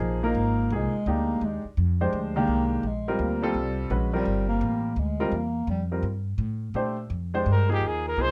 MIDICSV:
0, 0, Header, 1, 6, 480
1, 0, Start_track
1, 0, Tempo, 355450
1, 957, Time_signature, 3, 2, 24, 8
1, 11222, End_track
2, 0, Start_track
2, 0, Title_t, "Trumpet"
2, 0, Program_c, 0, 56
2, 10149, Note_on_c, 0, 70, 80
2, 10400, Note_off_c, 0, 70, 0
2, 10431, Note_on_c, 0, 67, 85
2, 10638, Note_on_c, 0, 68, 75
2, 10658, Note_off_c, 0, 67, 0
2, 10903, Note_off_c, 0, 68, 0
2, 10911, Note_on_c, 0, 70, 83
2, 11097, Note_on_c, 0, 72, 93
2, 11117, Note_off_c, 0, 70, 0
2, 11222, Note_off_c, 0, 72, 0
2, 11222, End_track
3, 0, Start_track
3, 0, Title_t, "Grand piano"
3, 0, Program_c, 1, 0
3, 0, Note_on_c, 1, 53, 80
3, 0, Note_on_c, 1, 58, 68
3, 0, Note_on_c, 1, 63, 71
3, 0, Note_on_c, 1, 68, 86
3, 271, Note_off_c, 1, 53, 0
3, 273, Note_off_c, 1, 58, 0
3, 277, Note_off_c, 1, 63, 0
3, 277, Note_off_c, 1, 68, 0
3, 309, Note_on_c, 1, 53, 76
3, 311, Note_on_c, 1, 58, 73
3, 316, Note_on_c, 1, 63, 75
3, 322, Note_on_c, 1, 70, 89
3, 926, Note_off_c, 1, 53, 0
3, 927, Note_off_c, 1, 58, 0
3, 929, Note_off_c, 1, 63, 0
3, 932, Note_off_c, 1, 70, 0
3, 970, Note_on_c, 1, 53, 67
3, 972, Note_on_c, 1, 58, 62
3, 979, Note_on_c, 1, 68, 80
3, 983, Note_on_c, 1, 63, 65
3, 1238, Note_off_c, 1, 53, 0
3, 1238, Note_off_c, 1, 58, 0
3, 1242, Note_off_c, 1, 68, 0
3, 1244, Note_off_c, 1, 63, 0
3, 1445, Note_on_c, 1, 63, 75
3, 1451, Note_on_c, 1, 56, 65
3, 1454, Note_on_c, 1, 62, 69
3, 1455, Note_on_c, 1, 67, 72
3, 2165, Note_off_c, 1, 63, 0
3, 2168, Note_off_c, 1, 56, 0
3, 2169, Note_off_c, 1, 62, 0
3, 2170, Note_off_c, 1, 67, 0
3, 2712, Note_on_c, 1, 56, 77
3, 2712, Note_on_c, 1, 62, 69
3, 2715, Note_on_c, 1, 67, 64
3, 2718, Note_on_c, 1, 72, 81
3, 3157, Note_off_c, 1, 56, 0
3, 3157, Note_off_c, 1, 62, 0
3, 3158, Note_off_c, 1, 67, 0
3, 3160, Note_off_c, 1, 72, 0
3, 3186, Note_on_c, 1, 51, 85
3, 3190, Note_on_c, 1, 62, 72
3, 3194, Note_on_c, 1, 56, 73
3, 3195, Note_on_c, 1, 67, 94
3, 3805, Note_off_c, 1, 51, 0
3, 3807, Note_off_c, 1, 62, 0
3, 3809, Note_off_c, 1, 56, 0
3, 3809, Note_off_c, 1, 67, 0
3, 4158, Note_on_c, 1, 55, 81
3, 4163, Note_on_c, 1, 70, 85
3, 4164, Note_on_c, 1, 60, 71
3, 4165, Note_on_c, 1, 65, 77
3, 4600, Note_off_c, 1, 55, 0
3, 4603, Note_off_c, 1, 60, 0
3, 4603, Note_off_c, 1, 65, 0
3, 4603, Note_off_c, 1, 70, 0
3, 4624, Note_on_c, 1, 55, 89
3, 4633, Note_on_c, 1, 60, 81
3, 4633, Note_on_c, 1, 65, 78
3, 4638, Note_on_c, 1, 69, 97
3, 5244, Note_off_c, 1, 55, 0
3, 5249, Note_off_c, 1, 60, 0
3, 5249, Note_off_c, 1, 65, 0
3, 5251, Note_off_c, 1, 69, 0
3, 5273, Note_on_c, 1, 56, 67
3, 5275, Note_on_c, 1, 61, 67
3, 5276, Note_on_c, 1, 66, 67
3, 5278, Note_on_c, 1, 71, 77
3, 5550, Note_off_c, 1, 56, 0
3, 5551, Note_off_c, 1, 61, 0
3, 5551, Note_off_c, 1, 66, 0
3, 5552, Note_off_c, 1, 71, 0
3, 5581, Note_on_c, 1, 55, 77
3, 5583, Note_on_c, 1, 65, 74
3, 5584, Note_on_c, 1, 60, 72
3, 5585, Note_on_c, 1, 70, 85
3, 6612, Note_off_c, 1, 55, 0
3, 6613, Note_off_c, 1, 65, 0
3, 6614, Note_off_c, 1, 60, 0
3, 6615, Note_off_c, 1, 70, 0
3, 7021, Note_on_c, 1, 55, 81
3, 7022, Note_on_c, 1, 60, 76
3, 7023, Note_on_c, 1, 65, 89
3, 7030, Note_on_c, 1, 70, 96
3, 7180, Note_off_c, 1, 55, 0
3, 7181, Note_off_c, 1, 60, 0
3, 7181, Note_off_c, 1, 65, 0
3, 7185, Note_off_c, 1, 70, 0
3, 7988, Note_on_c, 1, 55, 55
3, 7993, Note_on_c, 1, 65, 58
3, 7995, Note_on_c, 1, 60, 62
3, 7996, Note_on_c, 1, 70, 70
3, 8143, Note_off_c, 1, 55, 0
3, 8146, Note_off_c, 1, 65, 0
3, 8147, Note_off_c, 1, 60, 0
3, 8148, Note_off_c, 1, 70, 0
3, 9115, Note_on_c, 1, 57, 64
3, 9122, Note_on_c, 1, 67, 66
3, 9126, Note_on_c, 1, 62, 69
3, 9128, Note_on_c, 1, 72, 78
3, 9391, Note_off_c, 1, 57, 0
3, 9394, Note_off_c, 1, 67, 0
3, 9396, Note_off_c, 1, 62, 0
3, 9397, Note_off_c, 1, 72, 0
3, 9909, Note_on_c, 1, 56, 77
3, 9914, Note_on_c, 1, 62, 75
3, 9920, Note_on_c, 1, 67, 71
3, 9920, Note_on_c, 1, 72, 93
3, 10356, Note_off_c, 1, 56, 0
3, 10358, Note_off_c, 1, 62, 0
3, 10361, Note_off_c, 1, 67, 0
3, 10361, Note_off_c, 1, 72, 0
3, 10381, Note_on_c, 1, 53, 82
3, 10385, Note_on_c, 1, 58, 77
3, 10390, Note_on_c, 1, 63, 76
3, 10392, Note_on_c, 1, 68, 93
3, 11003, Note_off_c, 1, 53, 0
3, 11004, Note_off_c, 1, 58, 0
3, 11007, Note_off_c, 1, 63, 0
3, 11008, Note_off_c, 1, 68, 0
3, 11037, Note_on_c, 1, 53, 72
3, 11044, Note_on_c, 1, 58, 65
3, 11048, Note_on_c, 1, 63, 66
3, 11055, Note_on_c, 1, 68, 82
3, 11222, Note_off_c, 1, 53, 0
3, 11222, Note_off_c, 1, 58, 0
3, 11222, Note_off_c, 1, 63, 0
3, 11222, Note_off_c, 1, 68, 0
3, 11222, End_track
4, 0, Start_track
4, 0, Title_t, "Bass clarinet"
4, 0, Program_c, 2, 71
4, 0, Note_on_c, 2, 53, 77
4, 276, Note_off_c, 2, 53, 0
4, 311, Note_on_c, 2, 58, 106
4, 995, Note_on_c, 2, 56, 99
4, 1015, Note_off_c, 2, 58, 0
4, 1475, Note_on_c, 2, 58, 111
4, 1495, Note_off_c, 2, 56, 0
4, 1951, Note_on_c, 2, 56, 95
4, 1971, Note_off_c, 2, 58, 0
4, 2239, Note_off_c, 2, 56, 0
4, 2731, Note_on_c, 2, 53, 77
4, 3164, Note_off_c, 2, 53, 0
4, 3186, Note_on_c, 2, 58, 108
4, 3872, Note_on_c, 2, 56, 88
4, 3893, Note_off_c, 2, 58, 0
4, 4350, Note_on_c, 2, 58, 98
4, 4370, Note_off_c, 2, 56, 0
4, 4852, Note_on_c, 2, 55, 87
4, 4872, Note_off_c, 2, 58, 0
4, 5130, Note_off_c, 2, 55, 0
4, 5597, Note_on_c, 2, 55, 115
4, 6037, Note_off_c, 2, 55, 0
4, 6057, Note_on_c, 2, 58, 100
4, 6738, Note_on_c, 2, 56, 90
4, 6758, Note_off_c, 2, 58, 0
4, 7236, Note_on_c, 2, 58, 106
4, 7256, Note_off_c, 2, 56, 0
4, 7685, Note_off_c, 2, 58, 0
4, 7693, Note_on_c, 2, 55, 91
4, 7871, Note_off_c, 2, 55, 0
4, 11222, End_track
5, 0, Start_track
5, 0, Title_t, "Upright bass"
5, 0, Program_c, 3, 32
5, 0, Note_on_c, 3, 34, 100
5, 457, Note_off_c, 3, 34, 0
5, 465, Note_on_c, 3, 32, 90
5, 937, Note_off_c, 3, 32, 0
5, 951, Note_on_c, 3, 36, 97
5, 1237, Note_off_c, 3, 36, 0
5, 1432, Note_on_c, 3, 38, 91
5, 1900, Note_off_c, 3, 38, 0
5, 1908, Note_on_c, 3, 39, 90
5, 2195, Note_off_c, 3, 39, 0
5, 2393, Note_on_c, 3, 41, 92
5, 2861, Note_off_c, 3, 41, 0
5, 2872, Note_on_c, 3, 38, 94
5, 3333, Note_off_c, 3, 38, 0
5, 3341, Note_on_c, 3, 36, 78
5, 3815, Note_off_c, 3, 36, 0
5, 3824, Note_on_c, 3, 34, 86
5, 4297, Note_off_c, 3, 34, 0
5, 4307, Note_on_c, 3, 38, 91
5, 4775, Note_off_c, 3, 38, 0
5, 4783, Note_on_c, 3, 36, 86
5, 5256, Note_off_c, 3, 36, 0
5, 5267, Note_on_c, 3, 34, 93
5, 5738, Note_off_c, 3, 34, 0
5, 5745, Note_on_c, 3, 31, 94
5, 6217, Note_off_c, 3, 31, 0
5, 6225, Note_on_c, 3, 33, 101
5, 6692, Note_off_c, 3, 33, 0
5, 6700, Note_on_c, 3, 38, 93
5, 7171, Note_off_c, 3, 38, 0
5, 7179, Note_on_c, 3, 40, 92
5, 7654, Note_off_c, 3, 40, 0
5, 7660, Note_on_c, 3, 41, 91
5, 8129, Note_off_c, 3, 41, 0
5, 8138, Note_on_c, 3, 43, 94
5, 8607, Note_off_c, 3, 43, 0
5, 8615, Note_on_c, 3, 45, 99
5, 9092, Note_off_c, 3, 45, 0
5, 9103, Note_on_c, 3, 46, 93
5, 9576, Note_off_c, 3, 46, 0
5, 9586, Note_on_c, 3, 41, 89
5, 10058, Note_off_c, 3, 41, 0
5, 10072, Note_on_c, 3, 43, 95
5, 10541, Note_off_c, 3, 43, 0
5, 10548, Note_on_c, 3, 39, 84
5, 11019, Note_off_c, 3, 39, 0
5, 11024, Note_on_c, 3, 36, 84
5, 11222, Note_off_c, 3, 36, 0
5, 11222, End_track
6, 0, Start_track
6, 0, Title_t, "Muted upright bass strokes"
6, 1256, Note_on_c, 9, 29, 40
6, 1391, Note_off_c, 9, 29, 0
6, 2222, Note_on_c, 9, 29, 38
6, 2357, Note_off_c, 9, 29, 0
6, 11222, End_track
0, 0, End_of_file